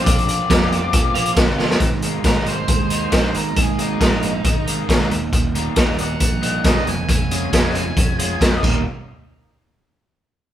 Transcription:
<<
  \new Staff \with { instrumentName = "Lead electric guitar" } { \time 4/4 \key aes \major \tempo 4 = 136 d''2. r4 | r4 bes'8 c''4. c''8 bes'8 | aes'8 ees'2 r4. | r4. ges''4. ees''8 aes''8 |
aes''4. aes''2 r8 | r1 | }
  \new Staff \with { instrumentName = "Tine electric piano" } { \time 4/4 \key aes \major d'2. r4 | r1 | r1 | r1 |
r1 | r1 | }
  \new Staff \with { instrumentName = "Clean electric guitar" } { \time 4/4 \key aes \major <f bes c' f'>8 r8 <f bes c' f'>8 r4 <f bes c' f'>8 r8 <f bes c' f'>8 | aes,8 aes8 ees'8 bes8 aes8 ees'8 aes8 bes8 | aes,8 aes8 ees'8 bes8 aes8 ees'8 aes8 ees,8 | ees,8 g8 ees'8 bes8 g8 ees'8 g8 des8 |
des8 des'8 aes'8 f'8 des'8 aes'8 des'8 <ees, bes, ees g bes ees'>8 | r1 | }
  \new Staff \with { instrumentName = "Overdriven electric guitar" } { \time 4/4 \key aes \major <bes, f bes c' f'>4 <f bes c' f'>4 <bes, f bes c' f'>8 <bes c' f'>8 <f bes c' f'>8 <bes c' f'>8 | r8 <ees aes bes ees'>8 <ees aes bes ees'>8 r4 <ees aes bes ees'>8 <ees aes bes ees'>8 r8 | r8 <ees aes bes ees'>8 <ees aes bes ees'>8 r4 <ees aes bes ees'>8 <ees aes bes ees'>8 r8 | r8 <ees g bes ees'>8 <ees g bes ees'>8 r4 <ees g bes ees'>8 <ees g bes ees'>8 r8 |
r8 <aes des' f' aes'>8 <aes des' f' aes'>8 r4 <aes des' f' aes'>8 <aes des' f' aes'>8 <ees, bes, ees g bes ees'>8 | r1 | }
  \new Staff \with { instrumentName = "Fingered electric bass" } { \clef bass \time 4/4 \key aes \major bes,,4 f,,4 bes,4 g,,4 | aes,,4 aes,,4 ees,4 bes,,8 aes,,8 | aes,,4 bes,,4 aes,,4 aes,,8 ees,,8~ | ees,,4 ees,,4 bes,,4 g,,8 f,,8 |
f,,4 f,,4 f,,4 f,,8 ees,,8 | r1 | }
  \new DrumStaff \with { instrumentName = "Drums" } \drummode { \time 4/4 <hh bd>16 hh16 hh8 <hh bd sn>8 hh8 <hh bd>8 hh16 hh16 <hh bd sn>8 sn16 sn16 | <hh bd>8 hh8 <hh bd sn>8 hh8 <hh bd>8 hh8 <hh bd sn>8 hh8 | <hh bd>8 hh8 <hh bd sn>8 hh8 <hh bd>8 hh8 <hh bd sn>8 hh8 | <hh bd>8 hh8 <hh bd sn>8 hh8 <hh bd>8 hh8 <hh bd sn>8 hh8 |
<hh bd>8 hh8 <hh bd sn>8 hh8 <hh bd>8 hh8 <hh bd sn>8 <cymc bd>8 | r4 r4 r4 r4 | }
>>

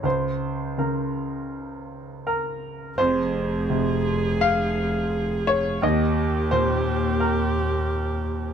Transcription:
<<
  \new Staff \with { instrumentName = "Grand piano" } { \time 4/4 \key f \minor \tempo 4 = 85 c''4 bes'2 bes'4 | c''2 f''4. des''8 | ees''4 c''4 bes'4 r4 | }
  \new Staff \with { instrumentName = "Grand piano" } { \clef bass \time 4/4 \key f \minor des,4 des2. | f,4 c2. | ees,4 bes,2. | }
  \new Staff \with { instrumentName = "Viola" } { \time 4/4 \key f \minor r1 | aes'1 | g'1 | }
  \new Staff \with { instrumentName = "Double bass" } { \clef bass \time 4/4 \key f \minor r1 | f,,1 | ees,1 | }
>>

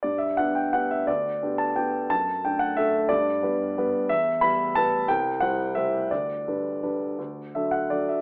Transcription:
\new Staff \with { instrumentName = "Grand piano" } { \time 3/4 \key g \major \tempo 4 = 175 << { d''8 e''8 fis''8 g''8 fis''8 e''8 | d''4. a''8 g''4 | a''4 g''8 fis''8 e''4 | d''2. |
e''4 b''4 a''4 | g''4 fis''4 e''4 | d''2.~ | d''4 e''8 fis''8 d''8 e''8 | } \\ { g,4 <b d' g'>4 <b d' g'>4 | d,4 <b d' g'>4 <b d' g'>4 | fis,4 <a d' a'>4 <a d' a'>4 | g,4 <g b b'>4 <g b b'>4 |
e,4 <g b b'>4 <g b b'>4 | c,4 <g e' c''>4 <g e' c''>4 | d,4 <g d' b'>4 <g d' b'>4 | d,4 <fis d' a'>4 <fis d' a'>4 | } >> }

